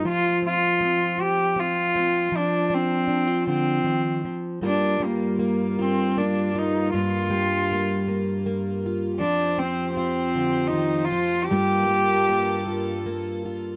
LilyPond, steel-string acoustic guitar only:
\new Staff \with { instrumentName = "Steel-string acoustic guitar" } { \time 6/8 \key g \minor \tempo 4. = 52 << { r4 c'8 f'8 c'8 c'8 | r4 d'16 f'4.~ f'16 | <g bes f' bes'>4 bes8 f'8 bes8 f'8 | r4 bes8 bes8 bes8 f'8 |
r4 f'2 | <g bes f'>4 bes8 f'8 bes8 f'8 | } \\ { f8 c'8 r2 | f8 d'4 d8 ees8 f8 | g,8 g2~ g8 | g,8 g2~ g8 |
f8 c'4 d8 ees8 f8 | g,8 g2~ g8 | } >> }